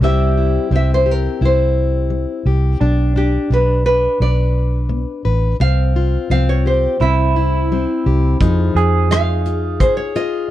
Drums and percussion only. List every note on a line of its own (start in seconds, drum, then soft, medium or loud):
8.41 kick medium
8.41 closed hi-hat medium
8.76 closed hi-hat soft
9.11 cross-stick medium
9.11 closed hi-hat medium
9.45 closed hi-hat soft
9.80 kick medium
9.80 closed hi-hat medium
10.15 closed hi-hat soft